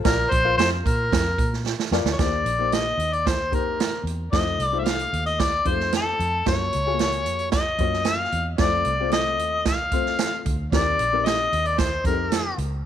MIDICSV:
0, 0, Header, 1, 5, 480
1, 0, Start_track
1, 0, Tempo, 533808
1, 46, Time_signature, 4, 2, 24, 8
1, 11560, End_track
2, 0, Start_track
2, 0, Title_t, "Harmonica"
2, 0, Program_c, 0, 22
2, 39, Note_on_c, 0, 70, 103
2, 278, Note_on_c, 0, 72, 111
2, 292, Note_off_c, 0, 70, 0
2, 509, Note_off_c, 0, 72, 0
2, 515, Note_on_c, 0, 72, 112
2, 625, Note_off_c, 0, 72, 0
2, 760, Note_on_c, 0, 70, 97
2, 1446, Note_off_c, 0, 70, 0
2, 1905, Note_on_c, 0, 73, 79
2, 1971, Note_on_c, 0, 74, 97
2, 1984, Note_off_c, 0, 73, 0
2, 2460, Note_on_c, 0, 75, 104
2, 2473, Note_off_c, 0, 74, 0
2, 2816, Note_on_c, 0, 74, 92
2, 2829, Note_off_c, 0, 75, 0
2, 2945, Note_on_c, 0, 72, 82
2, 2958, Note_off_c, 0, 74, 0
2, 3184, Note_on_c, 0, 70, 80
2, 3198, Note_off_c, 0, 72, 0
2, 3654, Note_off_c, 0, 70, 0
2, 3884, Note_on_c, 0, 75, 98
2, 4172, Note_off_c, 0, 75, 0
2, 4172, Note_on_c, 0, 74, 98
2, 4304, Note_on_c, 0, 76, 75
2, 4317, Note_off_c, 0, 74, 0
2, 4352, Note_on_c, 0, 77, 106
2, 4365, Note_off_c, 0, 76, 0
2, 4719, Note_off_c, 0, 77, 0
2, 4728, Note_on_c, 0, 75, 96
2, 4864, Note_on_c, 0, 74, 92
2, 4878, Note_off_c, 0, 75, 0
2, 5100, Note_on_c, 0, 72, 84
2, 5113, Note_off_c, 0, 74, 0
2, 5333, Note_off_c, 0, 72, 0
2, 5352, Note_on_c, 0, 69, 93
2, 5787, Note_off_c, 0, 69, 0
2, 5822, Note_on_c, 0, 73, 98
2, 6739, Note_off_c, 0, 73, 0
2, 6759, Note_on_c, 0, 75, 88
2, 7227, Note_on_c, 0, 77, 99
2, 7240, Note_off_c, 0, 75, 0
2, 7597, Note_off_c, 0, 77, 0
2, 7721, Note_on_c, 0, 74, 100
2, 8170, Note_off_c, 0, 74, 0
2, 8203, Note_on_c, 0, 75, 91
2, 8651, Note_off_c, 0, 75, 0
2, 8687, Note_on_c, 0, 77, 83
2, 9370, Note_off_c, 0, 77, 0
2, 9646, Note_on_c, 0, 74, 101
2, 10123, Note_on_c, 0, 75, 116
2, 10136, Note_off_c, 0, 74, 0
2, 10488, Note_on_c, 0, 74, 97
2, 10501, Note_off_c, 0, 75, 0
2, 10601, Note_on_c, 0, 72, 85
2, 10615, Note_off_c, 0, 74, 0
2, 10839, Note_off_c, 0, 72, 0
2, 10844, Note_on_c, 0, 70, 76
2, 11290, Note_off_c, 0, 70, 0
2, 11560, End_track
3, 0, Start_track
3, 0, Title_t, "Upright piano"
3, 0, Program_c, 1, 0
3, 41, Note_on_c, 1, 65, 82
3, 42, Note_on_c, 1, 70, 71
3, 47, Note_on_c, 1, 74, 84
3, 307, Note_off_c, 1, 65, 0
3, 308, Note_off_c, 1, 70, 0
3, 310, Note_off_c, 1, 74, 0
3, 402, Note_on_c, 1, 70, 67
3, 403, Note_on_c, 1, 65, 69
3, 403, Note_on_c, 1, 77, 81
3, 1107, Note_off_c, 1, 70, 0
3, 1107, Note_off_c, 1, 77, 0
3, 1108, Note_off_c, 1, 65, 0
3, 1729, Note_on_c, 1, 65, 83
3, 1735, Note_on_c, 1, 70, 84
3, 1738, Note_on_c, 1, 74, 97
3, 1902, Note_off_c, 1, 65, 0
3, 1905, Note_off_c, 1, 70, 0
3, 1907, Note_off_c, 1, 74, 0
3, 1968, Note_on_c, 1, 58, 69
3, 1971, Note_on_c, 1, 67, 67
3, 1972, Note_on_c, 1, 63, 65
3, 1973, Note_on_c, 1, 72, 78
3, 2230, Note_off_c, 1, 58, 0
3, 2231, Note_off_c, 1, 67, 0
3, 2232, Note_off_c, 1, 63, 0
3, 2233, Note_off_c, 1, 72, 0
3, 2324, Note_on_c, 1, 58, 70
3, 2328, Note_on_c, 1, 63, 57
3, 2330, Note_on_c, 1, 67, 61
3, 2334, Note_on_c, 1, 72, 75
3, 2941, Note_off_c, 1, 58, 0
3, 2943, Note_off_c, 1, 63, 0
3, 2943, Note_off_c, 1, 67, 0
3, 2945, Note_off_c, 1, 72, 0
3, 3165, Note_on_c, 1, 58, 60
3, 3165, Note_on_c, 1, 72, 75
3, 3166, Note_on_c, 1, 67, 65
3, 3168, Note_on_c, 1, 63, 61
3, 3693, Note_off_c, 1, 58, 0
3, 3693, Note_off_c, 1, 72, 0
3, 3694, Note_off_c, 1, 67, 0
3, 3695, Note_off_c, 1, 63, 0
3, 3886, Note_on_c, 1, 63, 65
3, 3888, Note_on_c, 1, 57, 69
3, 3891, Note_on_c, 1, 65, 61
3, 3892, Note_on_c, 1, 72, 75
3, 4150, Note_off_c, 1, 63, 0
3, 4151, Note_off_c, 1, 57, 0
3, 4152, Note_off_c, 1, 65, 0
3, 4153, Note_off_c, 1, 72, 0
3, 4247, Note_on_c, 1, 56, 52
3, 4249, Note_on_c, 1, 65, 64
3, 4252, Note_on_c, 1, 63, 68
3, 4255, Note_on_c, 1, 72, 75
3, 4304, Note_off_c, 1, 56, 0
3, 4304, Note_on_c, 1, 57, 67
3, 4864, Note_off_c, 1, 65, 0
3, 4866, Note_off_c, 1, 63, 0
3, 4867, Note_off_c, 1, 72, 0
3, 4891, Note_off_c, 1, 57, 0
3, 5082, Note_on_c, 1, 63, 63
3, 5085, Note_on_c, 1, 65, 59
3, 5086, Note_on_c, 1, 56, 58
3, 5090, Note_on_c, 1, 72, 72
3, 5140, Note_on_c, 1, 57, 70
3, 5144, Note_off_c, 1, 56, 0
3, 5613, Note_off_c, 1, 63, 0
3, 5614, Note_off_c, 1, 65, 0
3, 5616, Note_off_c, 1, 72, 0
3, 5641, Note_off_c, 1, 57, 0
3, 5810, Note_on_c, 1, 65, 62
3, 5813, Note_on_c, 1, 58, 67
3, 5815, Note_on_c, 1, 66, 64
3, 5815, Note_on_c, 1, 73, 80
3, 6072, Note_off_c, 1, 65, 0
3, 6074, Note_off_c, 1, 58, 0
3, 6075, Note_off_c, 1, 66, 0
3, 6075, Note_off_c, 1, 73, 0
3, 6172, Note_on_c, 1, 65, 67
3, 6173, Note_on_c, 1, 56, 60
3, 6176, Note_on_c, 1, 68, 78
3, 6177, Note_on_c, 1, 66, 64
3, 6227, Note_off_c, 1, 56, 0
3, 6230, Note_on_c, 1, 58, 68
3, 6786, Note_off_c, 1, 65, 0
3, 6788, Note_off_c, 1, 66, 0
3, 6788, Note_off_c, 1, 68, 0
3, 6815, Note_off_c, 1, 58, 0
3, 7014, Note_on_c, 1, 66, 60
3, 7015, Note_on_c, 1, 58, 72
3, 7017, Note_on_c, 1, 73, 72
3, 7018, Note_on_c, 1, 65, 59
3, 7539, Note_off_c, 1, 58, 0
3, 7539, Note_off_c, 1, 66, 0
3, 7540, Note_off_c, 1, 73, 0
3, 7541, Note_off_c, 1, 65, 0
3, 7731, Note_on_c, 1, 57, 72
3, 7733, Note_on_c, 1, 65, 61
3, 7733, Note_on_c, 1, 72, 81
3, 7734, Note_on_c, 1, 60, 63
3, 7993, Note_off_c, 1, 57, 0
3, 7994, Note_off_c, 1, 60, 0
3, 7994, Note_off_c, 1, 65, 0
3, 7994, Note_off_c, 1, 72, 0
3, 8093, Note_on_c, 1, 56, 57
3, 8093, Note_on_c, 1, 60, 64
3, 8097, Note_on_c, 1, 72, 83
3, 8099, Note_on_c, 1, 65, 66
3, 8147, Note_off_c, 1, 56, 0
3, 8154, Note_on_c, 1, 57, 71
3, 8706, Note_off_c, 1, 60, 0
3, 8708, Note_off_c, 1, 72, 0
3, 8709, Note_off_c, 1, 65, 0
3, 8737, Note_off_c, 1, 57, 0
3, 8928, Note_on_c, 1, 57, 64
3, 8930, Note_on_c, 1, 60, 66
3, 8933, Note_on_c, 1, 72, 74
3, 8934, Note_on_c, 1, 65, 62
3, 9455, Note_off_c, 1, 57, 0
3, 9456, Note_off_c, 1, 60, 0
3, 9458, Note_off_c, 1, 65, 0
3, 9458, Note_off_c, 1, 72, 0
3, 9643, Note_on_c, 1, 55, 73
3, 9648, Note_on_c, 1, 60, 67
3, 9650, Note_on_c, 1, 63, 65
3, 9655, Note_on_c, 1, 70, 80
3, 9908, Note_off_c, 1, 55, 0
3, 9911, Note_off_c, 1, 60, 0
3, 9912, Note_off_c, 1, 63, 0
3, 9914, Note_off_c, 1, 70, 0
3, 10004, Note_on_c, 1, 54, 60
3, 10006, Note_on_c, 1, 60, 66
3, 10010, Note_on_c, 1, 63, 66
3, 10014, Note_on_c, 1, 70, 74
3, 10062, Note_off_c, 1, 54, 0
3, 10062, Note_on_c, 1, 55, 72
3, 10621, Note_off_c, 1, 60, 0
3, 10623, Note_off_c, 1, 63, 0
3, 10625, Note_off_c, 1, 70, 0
3, 10649, Note_off_c, 1, 55, 0
3, 10846, Note_on_c, 1, 55, 62
3, 10848, Note_on_c, 1, 60, 61
3, 10851, Note_on_c, 1, 63, 60
3, 10853, Note_on_c, 1, 69, 61
3, 10906, Note_off_c, 1, 69, 0
3, 10908, Note_on_c, 1, 70, 78
3, 11372, Note_off_c, 1, 55, 0
3, 11374, Note_off_c, 1, 60, 0
3, 11375, Note_off_c, 1, 63, 0
3, 11403, Note_off_c, 1, 70, 0
3, 11560, End_track
4, 0, Start_track
4, 0, Title_t, "Fingered electric bass"
4, 0, Program_c, 2, 33
4, 45, Note_on_c, 2, 34, 95
4, 255, Note_off_c, 2, 34, 0
4, 281, Note_on_c, 2, 34, 98
4, 492, Note_off_c, 2, 34, 0
4, 521, Note_on_c, 2, 41, 85
4, 733, Note_off_c, 2, 41, 0
4, 768, Note_on_c, 2, 46, 97
4, 976, Note_off_c, 2, 46, 0
4, 1010, Note_on_c, 2, 41, 96
4, 1218, Note_off_c, 2, 41, 0
4, 1243, Note_on_c, 2, 46, 87
4, 1558, Note_off_c, 2, 46, 0
4, 1720, Note_on_c, 2, 41, 80
4, 1827, Note_off_c, 2, 41, 0
4, 1838, Note_on_c, 2, 38, 91
4, 1946, Note_off_c, 2, 38, 0
4, 1970, Note_on_c, 2, 39, 102
4, 2177, Note_off_c, 2, 39, 0
4, 2196, Note_on_c, 2, 34, 86
4, 2620, Note_off_c, 2, 34, 0
4, 2675, Note_on_c, 2, 39, 89
4, 3164, Note_off_c, 2, 39, 0
4, 3164, Note_on_c, 2, 41, 86
4, 3584, Note_off_c, 2, 41, 0
4, 3629, Note_on_c, 2, 40, 78
4, 3846, Note_off_c, 2, 40, 0
4, 3894, Note_on_c, 2, 41, 98
4, 4100, Note_off_c, 2, 41, 0
4, 4124, Note_on_c, 2, 36, 87
4, 4545, Note_off_c, 2, 36, 0
4, 4611, Note_on_c, 2, 39, 88
4, 5029, Note_off_c, 2, 39, 0
4, 5083, Note_on_c, 2, 41, 80
4, 5505, Note_off_c, 2, 41, 0
4, 5569, Note_on_c, 2, 41, 89
4, 5778, Note_off_c, 2, 41, 0
4, 5811, Note_on_c, 2, 42, 98
4, 6019, Note_off_c, 2, 42, 0
4, 6067, Note_on_c, 2, 37, 86
4, 6538, Note_off_c, 2, 37, 0
4, 6538, Note_on_c, 2, 41, 83
4, 6953, Note_off_c, 2, 41, 0
4, 7001, Note_on_c, 2, 42, 83
4, 7423, Note_off_c, 2, 42, 0
4, 7486, Note_on_c, 2, 40, 88
4, 7696, Note_off_c, 2, 40, 0
4, 7728, Note_on_c, 2, 41, 93
4, 7937, Note_off_c, 2, 41, 0
4, 7963, Note_on_c, 2, 36, 79
4, 8446, Note_off_c, 2, 36, 0
4, 8446, Note_on_c, 2, 39, 91
4, 8912, Note_off_c, 2, 39, 0
4, 8912, Note_on_c, 2, 41, 75
4, 9338, Note_off_c, 2, 41, 0
4, 9402, Note_on_c, 2, 38, 82
4, 9613, Note_off_c, 2, 38, 0
4, 9638, Note_on_c, 2, 39, 96
4, 9851, Note_off_c, 2, 39, 0
4, 9884, Note_on_c, 2, 34, 82
4, 10304, Note_off_c, 2, 34, 0
4, 10364, Note_on_c, 2, 39, 88
4, 10784, Note_off_c, 2, 39, 0
4, 10827, Note_on_c, 2, 41, 75
4, 11253, Note_off_c, 2, 41, 0
4, 11312, Note_on_c, 2, 37, 88
4, 11526, Note_off_c, 2, 37, 0
4, 11560, End_track
5, 0, Start_track
5, 0, Title_t, "Drums"
5, 43, Note_on_c, 9, 42, 86
5, 44, Note_on_c, 9, 38, 122
5, 45, Note_on_c, 9, 36, 114
5, 133, Note_off_c, 9, 42, 0
5, 134, Note_off_c, 9, 38, 0
5, 135, Note_off_c, 9, 36, 0
5, 284, Note_on_c, 9, 36, 84
5, 287, Note_on_c, 9, 42, 85
5, 374, Note_off_c, 9, 36, 0
5, 377, Note_off_c, 9, 42, 0
5, 529, Note_on_c, 9, 42, 84
5, 538, Note_on_c, 9, 38, 107
5, 619, Note_off_c, 9, 42, 0
5, 628, Note_off_c, 9, 38, 0
5, 770, Note_on_c, 9, 36, 87
5, 776, Note_on_c, 9, 42, 76
5, 860, Note_off_c, 9, 36, 0
5, 866, Note_off_c, 9, 42, 0
5, 1011, Note_on_c, 9, 36, 95
5, 1015, Note_on_c, 9, 38, 116
5, 1016, Note_on_c, 9, 42, 92
5, 1101, Note_off_c, 9, 36, 0
5, 1105, Note_off_c, 9, 38, 0
5, 1106, Note_off_c, 9, 42, 0
5, 1244, Note_on_c, 9, 36, 86
5, 1247, Note_on_c, 9, 42, 73
5, 1334, Note_off_c, 9, 36, 0
5, 1337, Note_off_c, 9, 42, 0
5, 1379, Note_on_c, 9, 38, 34
5, 1469, Note_off_c, 9, 38, 0
5, 1493, Note_on_c, 9, 38, 61
5, 1583, Note_off_c, 9, 38, 0
5, 1613, Note_on_c, 9, 38, 67
5, 1703, Note_off_c, 9, 38, 0
5, 1729, Note_on_c, 9, 38, 86
5, 1818, Note_off_c, 9, 38, 0
5, 1849, Note_on_c, 9, 38, 98
5, 1939, Note_off_c, 9, 38, 0
5, 1968, Note_on_c, 9, 42, 77
5, 1969, Note_on_c, 9, 38, 108
5, 1970, Note_on_c, 9, 36, 119
5, 2058, Note_off_c, 9, 42, 0
5, 2059, Note_off_c, 9, 38, 0
5, 2060, Note_off_c, 9, 36, 0
5, 2211, Note_on_c, 9, 42, 82
5, 2301, Note_off_c, 9, 42, 0
5, 2447, Note_on_c, 9, 42, 74
5, 2456, Note_on_c, 9, 38, 102
5, 2537, Note_off_c, 9, 42, 0
5, 2546, Note_off_c, 9, 38, 0
5, 2693, Note_on_c, 9, 42, 68
5, 2783, Note_off_c, 9, 42, 0
5, 2816, Note_on_c, 9, 42, 46
5, 2906, Note_off_c, 9, 42, 0
5, 2936, Note_on_c, 9, 36, 85
5, 2938, Note_on_c, 9, 38, 106
5, 2939, Note_on_c, 9, 42, 89
5, 3026, Note_off_c, 9, 36, 0
5, 3028, Note_off_c, 9, 38, 0
5, 3029, Note_off_c, 9, 42, 0
5, 3168, Note_on_c, 9, 36, 77
5, 3173, Note_on_c, 9, 42, 61
5, 3258, Note_off_c, 9, 36, 0
5, 3262, Note_off_c, 9, 42, 0
5, 3417, Note_on_c, 9, 42, 86
5, 3422, Note_on_c, 9, 38, 108
5, 3507, Note_off_c, 9, 42, 0
5, 3512, Note_off_c, 9, 38, 0
5, 3660, Note_on_c, 9, 42, 70
5, 3750, Note_off_c, 9, 42, 0
5, 3893, Note_on_c, 9, 36, 115
5, 3895, Note_on_c, 9, 42, 81
5, 3896, Note_on_c, 9, 38, 109
5, 3983, Note_off_c, 9, 36, 0
5, 3985, Note_off_c, 9, 42, 0
5, 3986, Note_off_c, 9, 38, 0
5, 4134, Note_on_c, 9, 42, 77
5, 4224, Note_off_c, 9, 42, 0
5, 4366, Note_on_c, 9, 42, 77
5, 4374, Note_on_c, 9, 38, 108
5, 4456, Note_off_c, 9, 42, 0
5, 4464, Note_off_c, 9, 38, 0
5, 4489, Note_on_c, 9, 42, 55
5, 4579, Note_off_c, 9, 42, 0
5, 4617, Note_on_c, 9, 42, 71
5, 4707, Note_off_c, 9, 42, 0
5, 4732, Note_on_c, 9, 42, 46
5, 4822, Note_off_c, 9, 42, 0
5, 4853, Note_on_c, 9, 36, 91
5, 4853, Note_on_c, 9, 38, 105
5, 4854, Note_on_c, 9, 42, 85
5, 4942, Note_off_c, 9, 38, 0
5, 4943, Note_off_c, 9, 36, 0
5, 4944, Note_off_c, 9, 42, 0
5, 5084, Note_on_c, 9, 42, 64
5, 5086, Note_on_c, 9, 36, 76
5, 5174, Note_off_c, 9, 42, 0
5, 5176, Note_off_c, 9, 36, 0
5, 5217, Note_on_c, 9, 38, 32
5, 5306, Note_off_c, 9, 38, 0
5, 5328, Note_on_c, 9, 42, 95
5, 5333, Note_on_c, 9, 38, 102
5, 5417, Note_off_c, 9, 42, 0
5, 5422, Note_off_c, 9, 38, 0
5, 5577, Note_on_c, 9, 42, 69
5, 5667, Note_off_c, 9, 42, 0
5, 5812, Note_on_c, 9, 36, 109
5, 5812, Note_on_c, 9, 42, 81
5, 5813, Note_on_c, 9, 38, 117
5, 5902, Note_off_c, 9, 36, 0
5, 5902, Note_off_c, 9, 42, 0
5, 5903, Note_off_c, 9, 38, 0
5, 6049, Note_on_c, 9, 42, 83
5, 6139, Note_off_c, 9, 42, 0
5, 6286, Note_on_c, 9, 42, 82
5, 6295, Note_on_c, 9, 38, 103
5, 6376, Note_off_c, 9, 42, 0
5, 6384, Note_off_c, 9, 38, 0
5, 6404, Note_on_c, 9, 42, 52
5, 6494, Note_off_c, 9, 42, 0
5, 6526, Note_on_c, 9, 42, 70
5, 6616, Note_off_c, 9, 42, 0
5, 6643, Note_on_c, 9, 42, 46
5, 6733, Note_off_c, 9, 42, 0
5, 6761, Note_on_c, 9, 38, 110
5, 6762, Note_on_c, 9, 42, 90
5, 6771, Note_on_c, 9, 36, 92
5, 6851, Note_off_c, 9, 38, 0
5, 6852, Note_off_c, 9, 42, 0
5, 6861, Note_off_c, 9, 36, 0
5, 6999, Note_on_c, 9, 42, 62
5, 7004, Note_on_c, 9, 36, 81
5, 7089, Note_off_c, 9, 42, 0
5, 7094, Note_off_c, 9, 36, 0
5, 7133, Note_on_c, 9, 38, 33
5, 7223, Note_off_c, 9, 38, 0
5, 7235, Note_on_c, 9, 42, 87
5, 7240, Note_on_c, 9, 38, 104
5, 7325, Note_off_c, 9, 42, 0
5, 7330, Note_off_c, 9, 38, 0
5, 7484, Note_on_c, 9, 42, 74
5, 7574, Note_off_c, 9, 42, 0
5, 7716, Note_on_c, 9, 42, 84
5, 7718, Note_on_c, 9, 38, 110
5, 7726, Note_on_c, 9, 36, 117
5, 7806, Note_off_c, 9, 42, 0
5, 7808, Note_off_c, 9, 38, 0
5, 7816, Note_off_c, 9, 36, 0
5, 7955, Note_on_c, 9, 42, 74
5, 8044, Note_off_c, 9, 42, 0
5, 8196, Note_on_c, 9, 42, 83
5, 8205, Note_on_c, 9, 38, 107
5, 8286, Note_off_c, 9, 42, 0
5, 8295, Note_off_c, 9, 38, 0
5, 8446, Note_on_c, 9, 42, 66
5, 8536, Note_off_c, 9, 42, 0
5, 8682, Note_on_c, 9, 38, 112
5, 8683, Note_on_c, 9, 42, 88
5, 8685, Note_on_c, 9, 36, 93
5, 8772, Note_off_c, 9, 38, 0
5, 8773, Note_off_c, 9, 42, 0
5, 8775, Note_off_c, 9, 36, 0
5, 8915, Note_on_c, 9, 42, 67
5, 8917, Note_on_c, 9, 36, 80
5, 9005, Note_off_c, 9, 42, 0
5, 9007, Note_off_c, 9, 36, 0
5, 9047, Note_on_c, 9, 38, 32
5, 9137, Note_off_c, 9, 38, 0
5, 9158, Note_on_c, 9, 42, 90
5, 9163, Note_on_c, 9, 38, 104
5, 9248, Note_off_c, 9, 42, 0
5, 9253, Note_off_c, 9, 38, 0
5, 9403, Note_on_c, 9, 42, 76
5, 9404, Note_on_c, 9, 36, 79
5, 9493, Note_off_c, 9, 42, 0
5, 9494, Note_off_c, 9, 36, 0
5, 9643, Note_on_c, 9, 36, 115
5, 9646, Note_on_c, 9, 42, 82
5, 9648, Note_on_c, 9, 38, 113
5, 9733, Note_off_c, 9, 36, 0
5, 9736, Note_off_c, 9, 42, 0
5, 9738, Note_off_c, 9, 38, 0
5, 9882, Note_on_c, 9, 42, 78
5, 9972, Note_off_c, 9, 42, 0
5, 10124, Note_on_c, 9, 42, 76
5, 10132, Note_on_c, 9, 38, 109
5, 10214, Note_off_c, 9, 42, 0
5, 10222, Note_off_c, 9, 38, 0
5, 10366, Note_on_c, 9, 42, 76
5, 10456, Note_off_c, 9, 42, 0
5, 10480, Note_on_c, 9, 42, 45
5, 10570, Note_off_c, 9, 42, 0
5, 10596, Note_on_c, 9, 38, 105
5, 10597, Note_on_c, 9, 42, 92
5, 10601, Note_on_c, 9, 36, 87
5, 10686, Note_off_c, 9, 38, 0
5, 10687, Note_off_c, 9, 42, 0
5, 10691, Note_off_c, 9, 36, 0
5, 10832, Note_on_c, 9, 42, 68
5, 10833, Note_on_c, 9, 36, 83
5, 10922, Note_off_c, 9, 36, 0
5, 10922, Note_off_c, 9, 42, 0
5, 11074, Note_on_c, 9, 42, 97
5, 11079, Note_on_c, 9, 38, 106
5, 11164, Note_off_c, 9, 42, 0
5, 11169, Note_off_c, 9, 38, 0
5, 11315, Note_on_c, 9, 42, 71
5, 11405, Note_off_c, 9, 42, 0
5, 11560, End_track
0, 0, End_of_file